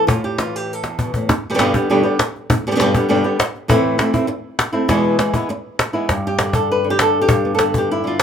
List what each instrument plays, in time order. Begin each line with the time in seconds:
0.07 nylon-string guitar A2 F4, cajon bass
0.24 nylon-string guitar G4
0.38 nylon-string guitar E3 F4, cajon slap
0.56 nylon-string guitar G4
0.73 nylon-string guitar A4
0.84 nylon-string guitar E2, cajon slap
0.99 nylon-string guitar B2, cajon bass
1.14 nylon-string guitar A2, cajon bass
1.29 muted nylon-string guitar stroke, cajon bass, cajon slap
1.50 nylon-string guitar B2 D3 G3 B3 G4
1.54 nylon-string guitar B2 D3 G3 B3 G4
1.58 nylon-string guitar G2 B2 D3 G3 B3 G4, cajon slap
1.74 nylon-string guitar D3 G3 B3 G4, cajon bass
1.90 nylon-string guitar G2 B2 D3 G3 B3 G4
2.03 nylon-string guitar D3 G3 B3 G4, cajon slap
2.19 muted nylon-string guitar stroke, cajon slap
2.35 cajon slap
2.50 muted nylon-string guitar stroke, cajon bass
2.67 nylon-string guitar B2 D3 G3 B3 G4
2.71 nylon-string guitar B2 D3 G3 B3 G4
2.76 nylon-string guitar B2 D3 G3 B3 G4
2.80 nylon-string guitar G2 B2 D3 G3 B3 G4, cajon slap
2.94 nylon-string guitar D3 G3 B3 G4, cajon bass
3.09 nylon-string guitar G2 B2 D3 G3 B3 G4
3.24 nylon-string guitar D3 G3 B3 G4, cajon slap
3.39 muted nylon-string guitar stroke, cajon slap
3.55 cajon slap
3.68 nylon-string guitar A2 E3 A3 C4 E4, cajon bass
3.98 nylon-string guitar E3 A3 C4 E4, cajon slap
4.13 nylon-string guitar A3 C4 E4, cajon bass
4.27 muted nylon-string guitar stroke
4.59 cajon slap
4.73 nylon-string guitar A3 C4 E4
4.88 nylon-string guitar E2 B2 E3 G#3 B3 E4, cajon bass, cajon slap
5.19 nylon-string guitar E3 G#3 B3 E4, cajon slap
5.34 nylon-string guitar E3 G#3 B3 E4, cajon bass
5.49 muted nylon-string guitar stroke
5.79 cajon slap
5.93 nylon-string guitar E3 G#3 B3 E4
6.09 nylon-string guitar G2, cajon bass, cajon slap
6.27 nylon-string guitar G4
6.39 nylon-string guitar D3, cajon slap
6.53 nylon-string guitar A4, cajon bass
6.72 nylon-string guitar B4
6.84 nylon-string guitar D3, cajon slap
6.90 nylon-string guitar G4
6.99 nylon-string guitar A4, cajon slap
7.22 nylon-string guitar G4
7.29 nylon-string guitar G2, cajon bass
7.45 nylon-string guitar B3
7.55 nylon-string guitar D3 A4
7.59 cajon slap
7.74 nylon-string guitar G4, cajon bass
7.91 nylon-string guitar E4
8.04 nylon-string guitar D3 F4, cajon slap
8.20 cajon slap